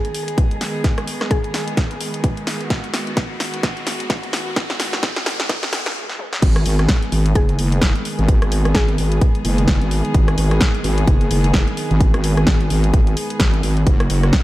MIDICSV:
0, 0, Header, 1, 7, 480
1, 0, Start_track
1, 0, Key_signature, 5, "minor"
1, 0, Tempo, 465116
1, 870, Time_signature, 4, 2, 24, 8
1, 14895, End_track
2, 0, Start_track
2, 0, Title_t, "Synth pluck"
2, 0, Program_c, 0, 84
2, 1349, Note_on_c, 0, 68, 91
2, 1729, Note_off_c, 0, 68, 0
2, 7590, Note_on_c, 0, 68, 90
2, 7765, Note_off_c, 0, 68, 0
2, 9030, Note_on_c, 0, 68, 94
2, 9409, Note_off_c, 0, 68, 0
2, 14895, End_track
3, 0, Start_track
3, 0, Title_t, "String section"
3, 0, Program_c, 1, 48
3, 0, Note_on_c, 1, 51, 76
3, 0, Note_on_c, 1, 56, 70
3, 0, Note_on_c, 1, 59, 68
3, 0, Note_on_c, 1, 68, 80
3, 2752, Note_off_c, 1, 68, 0
3, 2790, Note_on_c, 1, 66, 84
3, 6109, Note_off_c, 1, 51, 0
3, 6109, Note_off_c, 1, 56, 0
3, 6109, Note_off_c, 1, 59, 0
3, 6117, Note_off_c, 1, 66, 0
3, 6630, Note_on_c, 1, 51, 80
3, 6630, Note_on_c, 1, 56, 74
3, 6630, Note_on_c, 1, 59, 74
3, 6630, Note_on_c, 1, 68, 89
3, 14269, Note_off_c, 1, 51, 0
3, 14269, Note_off_c, 1, 56, 0
3, 14269, Note_off_c, 1, 59, 0
3, 14269, Note_off_c, 1, 68, 0
3, 14311, Note_on_c, 1, 49, 80
3, 14311, Note_on_c, 1, 54, 72
3, 14311, Note_on_c, 1, 66, 88
3, 14312, Note_on_c, 1, 58, 73
3, 14895, Note_off_c, 1, 49, 0
3, 14895, Note_off_c, 1, 54, 0
3, 14895, Note_off_c, 1, 58, 0
3, 14895, Note_off_c, 1, 66, 0
3, 14895, End_track
4, 0, Start_track
4, 0, Title_t, "Wobble bass"
4, 0, Program_c, 2, 39
4, 6630, Note_on_c, 2, 32, 98
4, 6854, Note_off_c, 2, 32, 0
4, 6870, Note_on_c, 2, 32, 103
4, 7094, Note_off_c, 2, 32, 0
4, 7350, Note_on_c, 2, 32, 103
4, 7574, Note_off_c, 2, 32, 0
4, 7589, Note_on_c, 2, 30, 98
4, 7814, Note_off_c, 2, 30, 0
4, 7830, Note_on_c, 2, 30, 96
4, 8187, Note_off_c, 2, 30, 0
4, 8449, Note_on_c, 2, 32, 98
4, 8667, Note_off_c, 2, 32, 0
4, 8689, Note_on_c, 2, 32, 98
4, 9014, Note_off_c, 2, 32, 0
4, 9029, Note_on_c, 2, 32, 94
4, 9254, Note_off_c, 2, 32, 0
4, 9269, Note_on_c, 2, 32, 101
4, 9494, Note_off_c, 2, 32, 0
4, 9749, Note_on_c, 2, 30, 100
4, 10107, Note_off_c, 2, 30, 0
4, 10129, Note_on_c, 2, 32, 97
4, 10347, Note_off_c, 2, 32, 0
4, 10469, Note_on_c, 2, 32, 97
4, 10693, Note_off_c, 2, 32, 0
4, 10709, Note_on_c, 2, 32, 100
4, 10933, Note_off_c, 2, 32, 0
4, 11189, Note_on_c, 2, 32, 99
4, 11413, Note_off_c, 2, 32, 0
4, 11429, Note_on_c, 2, 30, 96
4, 11653, Note_off_c, 2, 30, 0
4, 11669, Note_on_c, 2, 30, 95
4, 12027, Note_off_c, 2, 30, 0
4, 12289, Note_on_c, 2, 32, 98
4, 12507, Note_off_c, 2, 32, 0
4, 12529, Note_on_c, 2, 32, 98
4, 12854, Note_off_c, 2, 32, 0
4, 12869, Note_on_c, 2, 32, 101
4, 13093, Note_off_c, 2, 32, 0
4, 13109, Note_on_c, 2, 32, 103
4, 13334, Note_off_c, 2, 32, 0
4, 13349, Note_on_c, 2, 32, 101
4, 13573, Note_off_c, 2, 32, 0
4, 13829, Note_on_c, 2, 32, 98
4, 14054, Note_off_c, 2, 32, 0
4, 14070, Note_on_c, 2, 32, 100
4, 14294, Note_off_c, 2, 32, 0
4, 14310, Note_on_c, 2, 30, 98
4, 14534, Note_off_c, 2, 30, 0
4, 14550, Note_on_c, 2, 30, 98
4, 14774, Note_off_c, 2, 30, 0
4, 14895, End_track
5, 0, Start_track
5, 0, Title_t, "Riser"
5, 0, Program_c, 3, 103
5, 0, Note_on_c, 3, 60, 77
5, 6150, Note_off_c, 3, 60, 0
5, 14895, End_track
6, 0, Start_track
6, 0, Title_t, "Swell"
6, 0, Program_c, 4, 103
6, 5670, Note_on_c, 4, 60, 78
6, 6630, Note_off_c, 4, 60, 0
6, 14895, End_track
7, 0, Start_track
7, 0, Title_t, "Drums"
7, 49, Note_on_c, 9, 42, 38
7, 150, Note_on_c, 9, 46, 103
7, 152, Note_off_c, 9, 42, 0
7, 253, Note_off_c, 9, 46, 0
7, 289, Note_on_c, 9, 42, 55
7, 389, Note_on_c, 9, 36, 118
7, 390, Note_off_c, 9, 42, 0
7, 390, Note_on_c, 9, 42, 77
7, 493, Note_off_c, 9, 36, 0
7, 493, Note_off_c, 9, 42, 0
7, 529, Note_on_c, 9, 42, 37
7, 630, Note_on_c, 9, 38, 56
7, 630, Note_on_c, 9, 46, 89
7, 632, Note_off_c, 9, 42, 0
7, 733, Note_off_c, 9, 38, 0
7, 733, Note_off_c, 9, 46, 0
7, 869, Note_on_c, 9, 36, 121
7, 870, Note_on_c, 9, 38, 60
7, 870, Note_on_c, 9, 42, 81
7, 973, Note_off_c, 9, 36, 0
7, 973, Note_off_c, 9, 38, 0
7, 973, Note_off_c, 9, 42, 0
7, 1009, Note_on_c, 9, 37, 82
7, 1009, Note_on_c, 9, 42, 38
7, 1109, Note_on_c, 9, 46, 106
7, 1112, Note_off_c, 9, 37, 0
7, 1112, Note_off_c, 9, 42, 0
7, 1212, Note_off_c, 9, 46, 0
7, 1249, Note_on_c, 9, 37, 73
7, 1249, Note_on_c, 9, 38, 49
7, 1249, Note_on_c, 9, 42, 36
7, 1349, Note_off_c, 9, 42, 0
7, 1349, Note_on_c, 9, 36, 122
7, 1349, Note_on_c, 9, 42, 80
7, 1352, Note_off_c, 9, 37, 0
7, 1352, Note_off_c, 9, 38, 0
7, 1453, Note_off_c, 9, 36, 0
7, 1453, Note_off_c, 9, 42, 0
7, 1489, Note_on_c, 9, 42, 36
7, 1589, Note_on_c, 9, 38, 66
7, 1589, Note_on_c, 9, 46, 96
7, 1592, Note_off_c, 9, 42, 0
7, 1692, Note_off_c, 9, 38, 0
7, 1692, Note_off_c, 9, 46, 0
7, 1729, Note_on_c, 9, 42, 53
7, 1829, Note_on_c, 9, 36, 120
7, 1830, Note_off_c, 9, 42, 0
7, 1830, Note_on_c, 9, 38, 64
7, 1830, Note_on_c, 9, 42, 80
7, 1933, Note_off_c, 9, 36, 0
7, 1933, Note_off_c, 9, 38, 0
7, 1933, Note_off_c, 9, 42, 0
7, 1969, Note_on_c, 9, 42, 38
7, 2070, Note_on_c, 9, 46, 110
7, 2073, Note_off_c, 9, 42, 0
7, 2173, Note_off_c, 9, 46, 0
7, 2209, Note_on_c, 9, 42, 55
7, 2309, Note_off_c, 9, 42, 0
7, 2309, Note_on_c, 9, 36, 118
7, 2309, Note_on_c, 9, 42, 77
7, 2412, Note_off_c, 9, 42, 0
7, 2413, Note_off_c, 9, 36, 0
7, 2449, Note_on_c, 9, 42, 36
7, 2549, Note_on_c, 9, 38, 70
7, 2549, Note_on_c, 9, 46, 98
7, 2552, Note_off_c, 9, 42, 0
7, 2652, Note_off_c, 9, 38, 0
7, 2652, Note_off_c, 9, 46, 0
7, 2689, Note_on_c, 9, 42, 36
7, 2789, Note_on_c, 9, 36, 123
7, 2790, Note_off_c, 9, 42, 0
7, 2790, Note_on_c, 9, 38, 74
7, 2790, Note_on_c, 9, 42, 78
7, 2892, Note_off_c, 9, 36, 0
7, 2893, Note_off_c, 9, 38, 0
7, 2893, Note_off_c, 9, 42, 0
7, 2929, Note_on_c, 9, 42, 36
7, 3030, Note_on_c, 9, 38, 76
7, 3030, Note_on_c, 9, 46, 110
7, 3033, Note_off_c, 9, 42, 0
7, 3133, Note_off_c, 9, 38, 0
7, 3133, Note_off_c, 9, 46, 0
7, 3169, Note_on_c, 9, 42, 35
7, 3269, Note_on_c, 9, 36, 125
7, 3270, Note_off_c, 9, 42, 0
7, 3270, Note_on_c, 9, 38, 74
7, 3270, Note_on_c, 9, 42, 78
7, 3372, Note_off_c, 9, 36, 0
7, 3373, Note_off_c, 9, 38, 0
7, 3373, Note_off_c, 9, 42, 0
7, 3510, Note_on_c, 9, 38, 81
7, 3510, Note_on_c, 9, 46, 100
7, 3613, Note_off_c, 9, 38, 0
7, 3613, Note_off_c, 9, 46, 0
7, 3650, Note_on_c, 9, 42, 53
7, 3749, Note_on_c, 9, 36, 126
7, 3750, Note_off_c, 9, 42, 0
7, 3750, Note_on_c, 9, 38, 84
7, 3750, Note_on_c, 9, 42, 79
7, 3852, Note_off_c, 9, 36, 0
7, 3853, Note_off_c, 9, 38, 0
7, 3853, Note_off_c, 9, 42, 0
7, 3890, Note_on_c, 9, 42, 37
7, 3990, Note_on_c, 9, 38, 85
7, 3990, Note_on_c, 9, 46, 114
7, 3993, Note_off_c, 9, 42, 0
7, 4093, Note_off_c, 9, 38, 0
7, 4093, Note_off_c, 9, 46, 0
7, 4129, Note_on_c, 9, 42, 54
7, 4229, Note_on_c, 9, 36, 126
7, 4230, Note_off_c, 9, 42, 0
7, 4230, Note_on_c, 9, 38, 83
7, 4230, Note_on_c, 9, 42, 79
7, 4332, Note_off_c, 9, 36, 0
7, 4333, Note_off_c, 9, 38, 0
7, 4333, Note_off_c, 9, 42, 0
7, 4370, Note_on_c, 9, 42, 34
7, 4469, Note_on_c, 9, 38, 93
7, 4469, Note_on_c, 9, 46, 97
7, 4473, Note_off_c, 9, 42, 0
7, 4573, Note_off_c, 9, 38, 0
7, 4573, Note_off_c, 9, 46, 0
7, 4709, Note_on_c, 9, 36, 127
7, 4710, Note_on_c, 9, 38, 97
7, 4710, Note_on_c, 9, 42, 79
7, 4813, Note_off_c, 9, 36, 0
7, 4813, Note_off_c, 9, 38, 0
7, 4813, Note_off_c, 9, 42, 0
7, 4849, Note_on_c, 9, 38, 84
7, 4849, Note_on_c, 9, 42, 36
7, 4950, Note_off_c, 9, 38, 0
7, 4950, Note_on_c, 9, 38, 96
7, 4950, Note_on_c, 9, 46, 112
7, 4952, Note_off_c, 9, 42, 0
7, 5053, Note_off_c, 9, 38, 0
7, 5053, Note_off_c, 9, 46, 0
7, 5089, Note_on_c, 9, 38, 82
7, 5089, Note_on_c, 9, 42, 34
7, 5189, Note_on_c, 9, 36, 125
7, 5190, Note_off_c, 9, 38, 0
7, 5190, Note_off_c, 9, 42, 0
7, 5190, Note_on_c, 9, 38, 98
7, 5190, Note_on_c, 9, 42, 73
7, 5293, Note_off_c, 9, 36, 0
7, 5293, Note_off_c, 9, 38, 0
7, 5293, Note_off_c, 9, 42, 0
7, 5329, Note_on_c, 9, 38, 88
7, 5329, Note_on_c, 9, 42, 35
7, 5430, Note_off_c, 9, 38, 0
7, 5430, Note_on_c, 9, 38, 100
7, 5430, Note_on_c, 9, 46, 100
7, 5432, Note_off_c, 9, 42, 0
7, 5534, Note_off_c, 9, 38, 0
7, 5534, Note_off_c, 9, 46, 0
7, 5569, Note_on_c, 9, 38, 88
7, 5569, Note_on_c, 9, 42, 52
7, 5670, Note_on_c, 9, 36, 126
7, 5671, Note_off_c, 9, 38, 0
7, 5671, Note_off_c, 9, 42, 0
7, 5671, Note_on_c, 9, 38, 102
7, 5671, Note_on_c, 9, 42, 78
7, 5773, Note_off_c, 9, 36, 0
7, 5774, Note_off_c, 9, 38, 0
7, 5774, Note_off_c, 9, 42, 0
7, 5810, Note_on_c, 9, 38, 97
7, 5810, Note_on_c, 9, 42, 37
7, 5910, Note_off_c, 9, 38, 0
7, 5910, Note_on_c, 9, 38, 104
7, 5910, Note_on_c, 9, 46, 110
7, 5913, Note_off_c, 9, 42, 0
7, 6013, Note_off_c, 9, 38, 0
7, 6013, Note_off_c, 9, 46, 0
7, 6049, Note_on_c, 9, 38, 96
7, 6049, Note_on_c, 9, 42, 54
7, 6153, Note_off_c, 9, 38, 0
7, 6153, Note_off_c, 9, 42, 0
7, 6289, Note_on_c, 9, 38, 52
7, 6390, Note_on_c, 9, 47, 82
7, 6393, Note_off_c, 9, 38, 0
7, 6493, Note_off_c, 9, 47, 0
7, 6529, Note_on_c, 9, 38, 81
7, 6629, Note_on_c, 9, 42, 86
7, 6629, Note_on_c, 9, 49, 106
7, 6630, Note_on_c, 9, 36, 121
7, 6632, Note_off_c, 9, 38, 0
7, 6733, Note_off_c, 9, 36, 0
7, 6733, Note_off_c, 9, 42, 0
7, 6733, Note_off_c, 9, 49, 0
7, 6769, Note_on_c, 9, 37, 84
7, 6769, Note_on_c, 9, 42, 41
7, 6870, Note_on_c, 9, 46, 108
7, 6872, Note_off_c, 9, 37, 0
7, 6872, Note_off_c, 9, 42, 0
7, 6973, Note_off_c, 9, 46, 0
7, 7009, Note_on_c, 9, 37, 78
7, 7009, Note_on_c, 9, 42, 37
7, 7106, Note_on_c, 9, 38, 124
7, 7110, Note_off_c, 9, 42, 0
7, 7110, Note_on_c, 9, 36, 121
7, 7110, Note_on_c, 9, 42, 81
7, 7112, Note_off_c, 9, 37, 0
7, 7209, Note_off_c, 9, 38, 0
7, 7213, Note_off_c, 9, 36, 0
7, 7213, Note_off_c, 9, 42, 0
7, 7249, Note_on_c, 9, 42, 38
7, 7350, Note_on_c, 9, 46, 95
7, 7353, Note_off_c, 9, 42, 0
7, 7453, Note_off_c, 9, 46, 0
7, 7489, Note_on_c, 9, 42, 56
7, 7589, Note_off_c, 9, 42, 0
7, 7589, Note_on_c, 9, 42, 85
7, 7590, Note_on_c, 9, 36, 121
7, 7693, Note_off_c, 9, 36, 0
7, 7693, Note_off_c, 9, 42, 0
7, 7729, Note_on_c, 9, 42, 39
7, 7829, Note_on_c, 9, 46, 104
7, 7833, Note_off_c, 9, 42, 0
7, 7933, Note_off_c, 9, 46, 0
7, 7969, Note_on_c, 9, 42, 56
7, 8065, Note_on_c, 9, 38, 125
7, 8070, Note_off_c, 9, 42, 0
7, 8070, Note_on_c, 9, 36, 120
7, 8070, Note_on_c, 9, 42, 84
7, 8169, Note_off_c, 9, 38, 0
7, 8173, Note_off_c, 9, 36, 0
7, 8173, Note_off_c, 9, 42, 0
7, 8209, Note_on_c, 9, 42, 39
7, 8310, Note_on_c, 9, 46, 95
7, 8313, Note_off_c, 9, 42, 0
7, 8413, Note_off_c, 9, 46, 0
7, 8449, Note_on_c, 9, 42, 39
7, 8550, Note_off_c, 9, 42, 0
7, 8550, Note_on_c, 9, 36, 127
7, 8550, Note_on_c, 9, 42, 86
7, 8653, Note_off_c, 9, 36, 0
7, 8653, Note_off_c, 9, 42, 0
7, 8690, Note_on_c, 9, 37, 83
7, 8690, Note_on_c, 9, 42, 39
7, 8790, Note_on_c, 9, 46, 112
7, 8793, Note_off_c, 9, 37, 0
7, 8793, Note_off_c, 9, 42, 0
7, 8893, Note_off_c, 9, 46, 0
7, 8930, Note_on_c, 9, 37, 76
7, 8930, Note_on_c, 9, 42, 37
7, 9026, Note_on_c, 9, 38, 125
7, 9029, Note_on_c, 9, 36, 124
7, 9030, Note_off_c, 9, 42, 0
7, 9030, Note_on_c, 9, 42, 77
7, 9033, Note_off_c, 9, 37, 0
7, 9129, Note_off_c, 9, 38, 0
7, 9133, Note_off_c, 9, 36, 0
7, 9133, Note_off_c, 9, 42, 0
7, 9169, Note_on_c, 9, 42, 37
7, 9270, Note_on_c, 9, 46, 98
7, 9272, Note_off_c, 9, 42, 0
7, 9373, Note_off_c, 9, 46, 0
7, 9409, Note_on_c, 9, 42, 56
7, 9509, Note_off_c, 9, 42, 0
7, 9509, Note_on_c, 9, 36, 125
7, 9509, Note_on_c, 9, 42, 83
7, 9612, Note_off_c, 9, 42, 0
7, 9613, Note_off_c, 9, 36, 0
7, 9649, Note_on_c, 9, 42, 37
7, 9750, Note_on_c, 9, 46, 109
7, 9752, Note_off_c, 9, 42, 0
7, 9853, Note_off_c, 9, 46, 0
7, 9889, Note_on_c, 9, 42, 56
7, 9985, Note_on_c, 9, 38, 123
7, 9989, Note_on_c, 9, 36, 127
7, 9990, Note_off_c, 9, 42, 0
7, 9990, Note_on_c, 9, 42, 81
7, 10089, Note_off_c, 9, 38, 0
7, 10093, Note_off_c, 9, 36, 0
7, 10093, Note_off_c, 9, 42, 0
7, 10129, Note_on_c, 9, 42, 36
7, 10229, Note_on_c, 9, 46, 100
7, 10232, Note_off_c, 9, 42, 0
7, 10332, Note_off_c, 9, 46, 0
7, 10369, Note_on_c, 9, 42, 39
7, 10469, Note_off_c, 9, 42, 0
7, 10469, Note_on_c, 9, 36, 127
7, 10469, Note_on_c, 9, 42, 77
7, 10572, Note_off_c, 9, 42, 0
7, 10573, Note_off_c, 9, 36, 0
7, 10609, Note_on_c, 9, 37, 84
7, 10609, Note_on_c, 9, 42, 37
7, 10709, Note_on_c, 9, 46, 111
7, 10712, Note_off_c, 9, 37, 0
7, 10712, Note_off_c, 9, 42, 0
7, 10813, Note_off_c, 9, 46, 0
7, 10849, Note_on_c, 9, 37, 71
7, 10849, Note_on_c, 9, 42, 35
7, 10945, Note_on_c, 9, 38, 122
7, 10949, Note_off_c, 9, 42, 0
7, 10949, Note_on_c, 9, 36, 127
7, 10949, Note_on_c, 9, 42, 78
7, 10952, Note_off_c, 9, 37, 0
7, 11048, Note_off_c, 9, 38, 0
7, 11052, Note_off_c, 9, 36, 0
7, 11053, Note_off_c, 9, 42, 0
7, 11089, Note_on_c, 9, 42, 36
7, 11189, Note_on_c, 9, 46, 99
7, 11192, Note_off_c, 9, 42, 0
7, 11293, Note_off_c, 9, 46, 0
7, 11329, Note_on_c, 9, 42, 53
7, 11429, Note_on_c, 9, 36, 124
7, 11430, Note_off_c, 9, 42, 0
7, 11430, Note_on_c, 9, 42, 79
7, 11532, Note_off_c, 9, 36, 0
7, 11533, Note_off_c, 9, 42, 0
7, 11568, Note_on_c, 9, 42, 39
7, 11669, Note_on_c, 9, 46, 114
7, 11672, Note_off_c, 9, 42, 0
7, 11772, Note_off_c, 9, 46, 0
7, 11809, Note_on_c, 9, 42, 55
7, 11905, Note_on_c, 9, 38, 125
7, 11909, Note_off_c, 9, 42, 0
7, 11909, Note_on_c, 9, 36, 126
7, 11909, Note_on_c, 9, 42, 79
7, 12008, Note_off_c, 9, 38, 0
7, 12012, Note_off_c, 9, 36, 0
7, 12012, Note_off_c, 9, 42, 0
7, 12049, Note_on_c, 9, 42, 36
7, 12149, Note_on_c, 9, 46, 96
7, 12152, Note_off_c, 9, 42, 0
7, 12252, Note_off_c, 9, 46, 0
7, 12289, Note_on_c, 9, 42, 36
7, 12389, Note_on_c, 9, 36, 125
7, 12390, Note_off_c, 9, 42, 0
7, 12390, Note_on_c, 9, 42, 77
7, 12492, Note_off_c, 9, 36, 0
7, 12493, Note_off_c, 9, 42, 0
7, 12529, Note_on_c, 9, 37, 83
7, 12529, Note_on_c, 9, 42, 35
7, 12629, Note_on_c, 9, 46, 109
7, 12632, Note_off_c, 9, 37, 0
7, 12632, Note_off_c, 9, 42, 0
7, 12733, Note_off_c, 9, 46, 0
7, 12769, Note_on_c, 9, 37, 74
7, 12769, Note_on_c, 9, 42, 35
7, 12866, Note_on_c, 9, 38, 121
7, 12869, Note_on_c, 9, 36, 125
7, 12870, Note_off_c, 9, 42, 0
7, 12870, Note_on_c, 9, 42, 77
7, 12873, Note_off_c, 9, 37, 0
7, 12969, Note_off_c, 9, 38, 0
7, 12972, Note_off_c, 9, 36, 0
7, 12973, Note_off_c, 9, 42, 0
7, 13009, Note_on_c, 9, 42, 34
7, 13110, Note_on_c, 9, 46, 99
7, 13112, Note_off_c, 9, 42, 0
7, 13213, Note_off_c, 9, 46, 0
7, 13249, Note_on_c, 9, 42, 50
7, 13349, Note_on_c, 9, 36, 126
7, 13350, Note_off_c, 9, 42, 0
7, 13350, Note_on_c, 9, 42, 78
7, 13453, Note_off_c, 9, 36, 0
7, 13454, Note_off_c, 9, 42, 0
7, 13489, Note_on_c, 9, 42, 38
7, 13590, Note_on_c, 9, 46, 107
7, 13592, Note_off_c, 9, 42, 0
7, 13693, Note_off_c, 9, 46, 0
7, 13729, Note_on_c, 9, 42, 53
7, 13825, Note_on_c, 9, 38, 118
7, 13829, Note_off_c, 9, 42, 0
7, 13829, Note_on_c, 9, 42, 78
7, 13830, Note_on_c, 9, 36, 127
7, 13928, Note_off_c, 9, 38, 0
7, 13933, Note_off_c, 9, 36, 0
7, 13933, Note_off_c, 9, 42, 0
7, 13969, Note_on_c, 9, 42, 35
7, 14070, Note_on_c, 9, 46, 98
7, 14072, Note_off_c, 9, 42, 0
7, 14173, Note_off_c, 9, 46, 0
7, 14209, Note_on_c, 9, 42, 36
7, 14310, Note_off_c, 9, 42, 0
7, 14310, Note_on_c, 9, 36, 119
7, 14310, Note_on_c, 9, 42, 80
7, 14413, Note_off_c, 9, 36, 0
7, 14413, Note_off_c, 9, 42, 0
7, 14449, Note_on_c, 9, 37, 85
7, 14449, Note_on_c, 9, 42, 36
7, 14550, Note_on_c, 9, 46, 102
7, 14553, Note_off_c, 9, 37, 0
7, 14553, Note_off_c, 9, 42, 0
7, 14653, Note_off_c, 9, 46, 0
7, 14689, Note_on_c, 9, 37, 76
7, 14689, Note_on_c, 9, 42, 34
7, 14786, Note_on_c, 9, 38, 114
7, 14790, Note_off_c, 9, 42, 0
7, 14790, Note_on_c, 9, 36, 124
7, 14790, Note_on_c, 9, 42, 74
7, 14792, Note_off_c, 9, 37, 0
7, 14889, Note_off_c, 9, 38, 0
7, 14893, Note_off_c, 9, 36, 0
7, 14894, Note_off_c, 9, 42, 0
7, 14895, End_track
0, 0, End_of_file